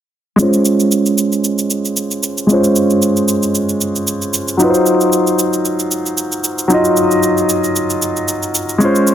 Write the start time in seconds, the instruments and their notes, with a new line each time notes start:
0.36 grand piano G#3 C#4, shaker
0.40 grand piano F4 C5
0.53 shaker
0.65 shaker
0.80 shaker
0.92 shaker
1.06 shaker
1.18 shaker
1.32 shaker
1.44 shaker
1.59 shaker
1.70 shaker
1.85 shaker
1.97 shaker
2.11 shaker
2.23 shaker
2.38 shaker
2.47 grand piano G#3 C#4, shaker
2.51 grand piano F4 C5
2.64 shaker
2.76 shaker
2.90 shaker
3.02 shaker
3.17 shaker
3.28 shaker
3.43 shaker
3.55 shaker
3.69 shaker
3.81 shaker
3.96 shaker
4.07 shaker
4.22 shaker
4.34 shaker
4.48 shaker
4.57 grand piano F#3 D#4, shaker
4.61 grand piano F4 B4
4.70 grand piano C5
4.74 shaker
4.86 shaker
5.01 shaker
5.13 shaker
5.27 shaker
5.39 shaker
5.53 shaker
5.65 shaker
5.79 shaker
5.91 shaker
6.06 shaker
6.18 shaker
6.32 shaker
6.44 shaker
6.58 shaker
6.68 grand piano F#3 D#4, shaker
6.72 grand piano F4 D#5
6.85 shaker
6.97 shaker
7.11 shaker
7.23 shaker
7.38 shaker
7.50 shaker
7.64 shaker
7.76 shaker
7.90 shaker
8.02 shaker
8.17 shaker
8.28 shaker
8.43 shaker
8.55 shaker
8.69 shaker
8.78 grand piano G#3 C#4, shaker
8.83 grand piano F4 C5
8.95 shaker
9.07 shaker